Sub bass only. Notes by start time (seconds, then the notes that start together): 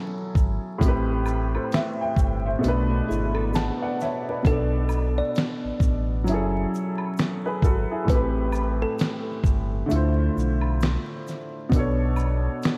0.36 G#1
0.82 A1
2.17 G1
2.65 B1
3.10 G#1
4.45 B1
5.64 A1
5.81 A1
6.28 F#1
7.63 G#1
8.09 A1
9.44 G1
9.92 D2
10.37 B1
11.73 B1